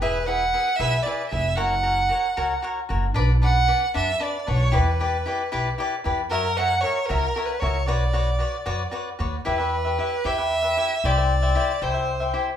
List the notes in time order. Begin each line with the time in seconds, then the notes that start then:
0.02 E1 E4 G#4 B4 E5
0.27 E4 G#4 B4 E5 F#5
0.53 E4 G#4 B4 E5
0.76 B1 E4 E5
0.80 G#4 B4 E5
1.02 E4 D5
1.06 G#4 B4 E5
1.29 F1 E4 G#4 B4 E5
1.55 F#1 F#4 A#4 C#5 F#5
1.83 F#4 A#4 C#5 F#5
2.09 F#4 A#4 C#5 F#5
2.37 C#2 F#4 A#4 C#5 F#5
2.62 F#4 A#4 C#5 F#5
2.89 F#1 F#4 A#4 C#5 F#5
3.14 B1 D4 B4 D5 F#5
3.42 D4 B4 D5 F#5
3.68 D4 B4 D5 F#5
3.94 F#2 D4 B4 D5 E5 F#5
4.20 D4 B4 D5 F#5
4.47 B1 D4 B4 C#5 D5 F#5
4.72 E2 E4 G4 B4 D5
4.99 E4 G4 B4 D5
5.26 E4 G4 B4 D5
5.52 B1 E4 G4 B4 D5
5.78 E4 G4 B4 D5
6.04 E2 E4 G4 B4 D5
6.30 F#2 F#4 A#4 C#5 E5
6.57 F#4 A#4 C#5 E5 F#5
6.81 F#4 A#4 C#5 E5
7.06 F#4 A#4
7.10 C#2 C#5 E5
7.36 F#4 A#4 C#5 E5
7.45 B4
7.59 C#2 F#4 A#4 C#5 E5
7.86 B1 F#4 B4 C#5 D5
8.13 F#4 B4 C#5 D5
8.39 F#4 B4 C#5 D5
8.66 F#2 F#4 B4 C#5 D5
8.91 F#4 B4 C#5 D5
9.19 D#2 F#4 B4 C#5 D5
9.45 E2 E4 G4 B4 E5
9.58 G4 B4 E5
9.85 G4 B4 E5
9.98 E4 G4 B4 E5
10.24 E2 E4 G4 B4 E5
10.38 G4 B4 E5
10.63 G4 B4 E5
10.77 E4 G4 B4 E5
11.04 C2 E4 G4 C5 D5 E5
11.17 G4 C5 E5
11.42 G4 C5 E5
11.55 E4 G4 C5 E5
11.82 C2 E4 G4 C5 E5
11.94 G4 C5 E5
12.20 G4 C5 E5
12.33 E4 G4 C5 E5